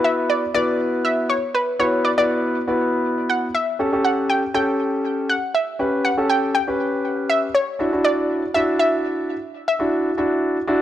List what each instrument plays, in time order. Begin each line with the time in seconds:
Already playing: grand piano B3 E4 F#4 B4
0.04 synth pluck E5
0.30 synth pluck D5
0.54 grand piano B3 E4 F#4 B4, synth pluck D5
1.05 synth pluck E5
1.29 synth pluck C#5
1.55 synth pluck B4
1.79 grand piano B3 E4 F#4 B4, synth pluck C#5
2.05 synth pluck D5
2.17 grand piano B3 E4 F#4 B4, synth pluck D5
2.67 grand piano B3 E4 F#4 B4
3.30 synth pluck F#5
3.55 synth pluck E5
3.79 grand piano C#4 G4 A4
3.93 grand piano C#4 G4 A4
4.04 synth pluck F#5
4.30 synth pluck G5
4.54 grand piano C#4 G4 A4, synth pluck G5
5.29 synth pluck F#5
5.54 synth pluck E5
5.79 grand piano C#4 G4 B4
6.05 synth pluck F#5
6.17 grand piano C#4 G4 A4
6.30 synth pluck G5
6.55 synth pluck G5
6.67 grand piano C#4 G4 B4
7.29 synth pluck E5
7.55 synth pluck C#5
7.79 grand piano D4 E4 F#4
7.92 grand piano D4 E4 F#4
8.05 synth pluck D5
8.54 grand piano D4 E4 F#4, synth pluck E5
8.79 synth pluck E5
9.68 synth pluck E5
9.79 grand piano D4 E4 F#4
10.17 grand piano D4 E4 F#4
10.67 grand piano D4 E4 F#4